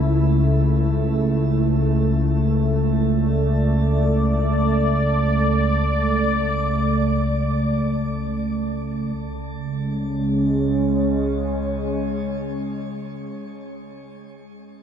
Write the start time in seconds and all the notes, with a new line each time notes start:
Already playing: C#2 C#3 A3 E4 B4
3.12 D5
9.16 C#2 C#3
9.31 G#3
9.46 C#4